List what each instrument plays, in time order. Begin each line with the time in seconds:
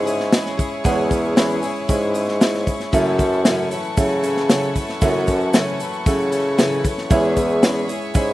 Already playing: felt piano E2 E3 G#3 C#4 E4 C#5 E5, bassoon G#2, string section E4 G#4 C#5 C#6
0.06 twelve-string acoustic guitar C#4 E4 G#4, open hi-hat, shaker
0.20 snare
0.32 twelve-string acoustic guitar E3 C#4 E4 G#4, felt piano G#3 C#4 E4 C#5 D#5, snare, open hi-hat, shaker
0.46 snare, shaker
0.57 twelve-string acoustic guitar C#4 E4 G#4, kick, open hi-hat, shaker
0.84 felt piano E2 E3 G#3 C#4 E4 C#5 F#5, bassoon E2, twelve-string acoustic guitar E3 C#4 E4 G#4, kick, open hi-hat, shaker
1.09 twelve-string acoustic guitar C#4 E4 G#4, kick, open hi-hat, shaker
1.25 shaker
1.36 twelve-string acoustic guitar E3 C#4 E4 G#4, felt piano G#3 C#4 E4 C#5 E5, snare, open hi-hat, shaker
1.50 shaker
1.62 twelve-string acoustic guitar C#4 E4 G#4, open hi-hat, shaker
1.76 shaker
1.88 bassoon G#2, twelve-string acoustic guitar E3 C#4 E4 G#4, felt piano G#3 C#4 E4 C#5 E5, kick, open hi-hat, shaker
2.02 shaker
2.14 twelve-string acoustic guitar C#4 E4 G#4, open hi-hat, shaker
2.28 snare
2.40 twelve-string acoustic guitar E3 C#4 E4 G#4, felt piano G#3 C#4 E4 C#5 E5, snare, open hi-hat, shaker
2.54 snare, shaker
2.66 twelve-string acoustic guitar C#4 E4 G#4, kick, open hi-hat, shaker
2.80 snare, shaker
2.92 felt piano F#1 F#2 F#3 C#4 E4 A4 E5, twelve-string acoustic guitar F#2 C#3 E3 A3 C#4 A4, bassoon F#2, string section A4 F#5, kick, open hi-hat, shaker
3.18 twelve-string acoustic guitar E3 A3 C#4 A4, kick, open hi-hat, shaker
3.33 shaker
3.45 twelve-string acoustic guitar F#2 C#3 E3 A3 C#4 A4, felt piano F#3 C#4 E4 A4 E5, snare, open hi-hat, shaker
3.71 twelve-string acoustic guitar E3 A3 C#4 A4, open hi-hat, shaker
3.84 shaker
3.97 bassoon C#3, twelve-string acoustic guitar E3 A3 C#4 A4, felt piano F#3 C#4 E4 A4 E5, kick, open hi-hat, shaker
4.11 shaker
4.23 twelve-string acoustic guitar E3 A3 C#4 A4, open hi-hat, shaker
4.37 snare
4.49 twelve-string acoustic guitar F#2 C#3 E3 A3 C#4 A4, felt piano F#3 C#4 E4 A4 C#5, snare, open hi-hat, shaker
4.63 shaker
4.75 twelve-string acoustic guitar E3 A3 C#4 A4, kick, open hi-hat, shaker
4.89 snare
5.01 felt piano F#1 F#2 F#3 C#4 E4 A4 E5, twelve-string acoustic guitar F#2 C#3 E3 A3 C#4 A4, bassoon F#2, kick, open hi-hat, shaker
5.27 twelve-string acoustic guitar E3 A3 C#4 A4, kick, open hi-hat, shaker
5.41 shaker
5.53 twelve-string acoustic guitar F#2 C#3 E3 A3 C#4 A4, felt piano F#3 C#4 E4 A4 E5, snare, open hi-hat, shaker
5.80 twelve-string acoustic guitar E3 A3 C#4 A4, open hi-hat, shaker
5.93 shaker
6.06 bassoon C#3, twelve-string acoustic guitar E3 A3 C#4 A4, felt piano F#3 C#4 E4 A4 E5, kick, open hi-hat, shaker
6.20 shaker
6.32 twelve-string acoustic guitar E3 A3 C#4 A4, open hi-hat, shaker
6.58 twelve-string acoustic guitar F#2 C#3 E3 A3 C#4 A4, felt piano F#3 C#4 E4 A4 E5, snare, open hi-hat, shaker
6.72 shaker
6.84 twelve-string acoustic guitar E3 A3 C#4 A4, kick, open hi-hat, shaker
6.98 snare
7.10 bassoon E2, felt piano E2 E3 G#3 C#4 E4 C#5 E5, twelve-string acoustic guitar E3 C#4 E4 G#4, string section G#4 C#5 E5, kick, open hi-hat, shaker
7.36 twelve-string acoustic guitar C#4 E4 G#4, kick, open hi-hat, shaker
7.50 shaker
7.62 twelve-string acoustic guitar E3 C#4 E4 G#4, felt piano G#3 C#4 E4 C#5 E5, snare, open hi-hat, shaker
7.88 twelve-string acoustic guitar C#4 E4 G#4, open hi-hat, shaker
8.02 shaker
8.14 bassoon G#2, twelve-string acoustic guitar E3 C#4 E4 G#4, felt piano G#3 C#4 E4 C#5 E5, kick, open hi-hat, shaker
8.29 shaker